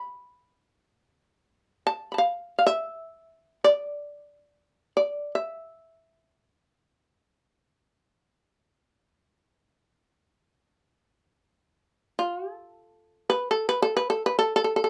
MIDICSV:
0, 0, Header, 1, 2, 480
1, 0, Start_track
1, 0, Tempo, 500000
1, 14300, End_track
2, 0, Start_track
2, 0, Title_t, "Shamisen"
2, 0, Program_c, 0, 106
2, 0, Note_on_c, 0, 83, 78
2, 1748, Note_off_c, 0, 83, 0
2, 1791, Note_on_c, 0, 81, 84
2, 2033, Note_on_c, 0, 83, 31
2, 2044, Note_off_c, 0, 81, 0
2, 2055, Note_on_c, 0, 81, 35
2, 2096, Note_on_c, 0, 77, 75
2, 2178, Note_off_c, 0, 83, 0
2, 2209, Note_off_c, 0, 81, 0
2, 2450, Note_off_c, 0, 77, 0
2, 2482, Note_on_c, 0, 77, 64
2, 2554, Note_off_c, 0, 77, 0
2, 2558, Note_on_c, 0, 76, 78
2, 3460, Note_off_c, 0, 76, 0
2, 3498, Note_on_c, 0, 74, 85
2, 4722, Note_off_c, 0, 74, 0
2, 4768, Note_on_c, 0, 74, 68
2, 5099, Note_off_c, 0, 74, 0
2, 5137, Note_on_c, 0, 76, 65
2, 8712, Note_off_c, 0, 76, 0
2, 11700, Note_on_c, 0, 65, 81
2, 12046, Note_off_c, 0, 65, 0
2, 12046, Note_on_c, 0, 69, 81
2, 12751, Note_off_c, 0, 69, 0
2, 12764, Note_on_c, 0, 71, 88
2, 12937, Note_off_c, 0, 71, 0
2, 12967, Note_on_c, 0, 69, 81
2, 13112, Note_off_c, 0, 69, 0
2, 13140, Note_on_c, 0, 71, 89
2, 13262, Note_off_c, 0, 71, 0
2, 13271, Note_on_c, 0, 69, 93
2, 13389, Note_off_c, 0, 69, 0
2, 13407, Note_on_c, 0, 71, 93
2, 13519, Note_off_c, 0, 71, 0
2, 13534, Note_on_c, 0, 69, 86
2, 13652, Note_off_c, 0, 69, 0
2, 13690, Note_on_c, 0, 71, 89
2, 13807, Note_off_c, 0, 71, 0
2, 13810, Note_on_c, 0, 69, 92
2, 13962, Note_off_c, 0, 69, 0
2, 13977, Note_on_c, 0, 69, 86
2, 14046, Note_off_c, 0, 69, 0
2, 14057, Note_on_c, 0, 69, 65
2, 14140, Note_off_c, 0, 69, 0
2, 14171, Note_on_c, 0, 69, 73
2, 14234, Note_off_c, 0, 69, 0
2, 14246, Note_on_c, 0, 69, 63
2, 14300, Note_off_c, 0, 69, 0
2, 14300, End_track
0, 0, End_of_file